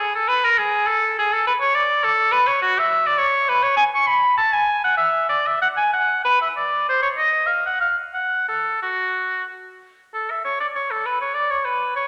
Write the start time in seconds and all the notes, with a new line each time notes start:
Already playing: G#4
0.15 A4
0.28 B4
0.44 A#4
0.58 G#4
0.87 A4
1.18 G#4
1.33 A4
1.47 B4
1.60 C#5
1.75 D5
2.04 A4
2.31 B4
2.47 C#5
2.62 F#4
2.79 E5
3.07 D5
3.18 C#5
3.49 B4
3.63 C#5
3.77 G#5
3.94 C#6
4.07 B5
4.37 A5
4.53 G#5
4.84 F#5
4.97 E5
5.29 D5
5.46 E5
5.62 F#5
5.77 G#5
5.93 F#5
6.24 B4
6.41 E5
6.56 D5
6.89 C5
7.02 C#5
7.17 D#5
7.47 F5
7.66 F#5
7.80 F5
8.14 F#5
8.48 A4
8.82 F#4
10.14 A4
10.30 E5
10.44 C#5
10.60 D5
10.75 C#5
10.91 A4
11.06 B4
11.21 C#5
11.34 D5
11.50 C#5
11.65 B4
11.96 C#5